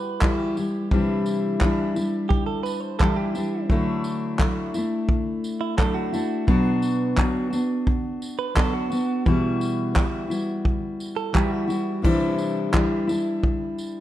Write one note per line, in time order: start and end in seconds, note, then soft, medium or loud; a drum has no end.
0.00 0.22 G3 soft
0.00 0.23 E4 medium
0.00 0.22 F#4 medium
0.00 0.21 B4 medium
0.21 0.56 E3 medium
0.21 0.57 G3 medium
0.21 0.56 E4 medium
0.21 0.58 F#4 medium
0.21 0.38 A4 medium
0.21 kick loud
0.21 clap loud
0.38 0.88 G4 medium
0.57 0.91 G3 soft
0.57 0.92 E4 medium
0.57 tambourine medium
0.91 1.61 C3 medium
0.91 1.61 E3 medium
0.91 1.61 G3 medium
0.91 1.63 D4 medium
0.91 1.64 E4 medium
0.91 kick loud
1.26 tambourine medium
1.61 1.96 E3 medium
1.61 1.97 G3 medium
1.61 1.96 D4 medium
1.61 1.94 E4 medium
1.61 kick loud
1.61 clap loud
1.95 3.00 G3 soft
1.95 3.02 D4 medium
1.95 3.03 E4 soft
1.95 tambourine medium
2.29 2.46 G4 medium
2.29 kick loud
2.46 2.63 A4 medium
2.63 2.80 B4 medium
2.63 tambourine medium
2.80 2.98 C5 medium
2.99 3.35 E3 medium
2.99 3.35 G3 medium
2.99 3.35 D4 medium
2.99 3.16 A4 medium
2.99 kick loud
2.99 clap medium
3.03 3.33 E4 medium
3.16 3.67 G4 medium
3.35 3.71 G3 medium
3.35 3.70 D4 medium
3.35 3.70 E4 medium
3.35 tambourine medium
3.69 4.46 D3 medium
3.69 4.39 F#3 medium
3.69 4.40 A3 loud
3.69 4.41 D4 medium
3.69 4.41 E4 loud
3.69 kick loud
4.04 tambourine medium
4.39 4.74 F#3 medium
4.39 4.75 A3 medium
4.39 4.75 D4 medium
4.39 4.73 E4 medium
4.39 kick loud
4.39 clap loud
4.74 5.77 A3 soft
4.74 5.79 D4 medium
4.74 5.79 E4 medium
4.74 tambourine medium
5.09 kick loud
5.44 tambourine medium
5.61 5.77 E4 medium
5.78 6.13 F#3 medium
5.78 6.13 A3 medium
5.78 6.13 D4 medium
5.78 6.11 E4 medium
5.78 5.95 A4 medium
5.78 kick loud
5.78 clap loud
5.94 6.45 F#4 medium
6.12 6.48 A3 medium
6.12 6.48 D4 medium
6.12 6.48 E4 medium
6.12 tambourine medium
6.47 7.17 B2 medium
6.47 7.16 F#3 medium
6.47 7.18 B3 medium
6.47 7.18 D4 loud
6.47 7.20 F#4 medium
6.47 kick loud
6.82 tambourine medium
7.17 7.52 F#3 medium
7.17 7.53 B3 medium
7.17 7.52 D4 medium
7.17 7.49 F#4 medium
7.17 kick loud
7.17 clap loud
7.50 8.56 B3 soft
7.50 8.56 D4 soft
7.50 8.58 F#4 medium
7.50 tambourine medium
7.87 kick loud
8.22 tambourine medium
8.39 8.56 B4 medium
8.55 8.91 F#3 medium
8.55 8.91 B3 medium
8.55 8.90 D4 medium
8.55 8.89 F#4 medium
8.55 8.73 A4 medium
8.55 kick loud
8.55 clap loud
8.73 9.23 F#4 medium
8.90 9.26 B3 soft
8.90 9.26 D4 soft
8.90 9.25 F#4 medium
8.90 tambourine medium
9.26 9.96 B2 medium
9.26 9.94 E3 medium
9.26 9.95 G3 medium
9.26 9.96 E4 medium
9.26 9.97 F#4 loud
9.26 kick loud
9.61 tambourine medium
9.94 10.30 E3 medium
9.94 10.31 G3 medium
9.94 10.29 E4 medium
9.94 10.27 F#4 medium
9.94 kick loud
9.94 clap loud
10.28 11.34 G3 soft
10.28 11.35 E4 medium
10.28 11.34 F#4 soft
10.28 tambourine medium
10.65 kick loud
11.00 tambourine medium
11.16 11.34 A4 medium
11.33 11.69 E3 medium
11.33 11.69 G3 medium
11.33 11.67 E4 medium
11.33 11.66 F#4 medium
11.33 11.51 G4 medium
11.33 kick loud
11.33 clap loud
11.51 12.01 F#4 medium
11.67 12.03 G3 soft
11.67 12.04 E4 medium
11.67 12.03 F#4 medium
11.67 tambourine medium
12.02 12.73 C3 medium
12.02 12.71 E3 medium
12.02 12.72 G3 medium
12.02 12.74 D4 medium
12.02 12.75 E4 medium
12.02 kick loud
12.02 crash loud
12.38 tambourine medium
12.72 13.08 E3 medium
12.72 13.09 G3 medium
12.72 13.09 D4 medium
12.72 13.06 E4 medium
12.72 kick loud
12.72 clap loud
13.07 14.00 G3 soft
13.07 14.00 D4 soft
13.07 14.00 E4 medium
13.07 tambourine medium
13.43 kick loud
13.78 tambourine medium